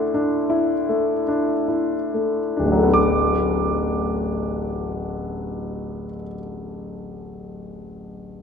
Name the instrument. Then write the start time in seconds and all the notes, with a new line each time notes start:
grand piano
Already playing: D2 A3 D4 E4 F#5 C#6 F#6
0.14 D4
0.50 E4
0.89 A3
1.28 D4
1.68 E4
2.14 A3
2.57 D1 D4
2.65 A1
2.71 F#3
2.77 A3
2.83 B3
2.89 D4
2.94 D6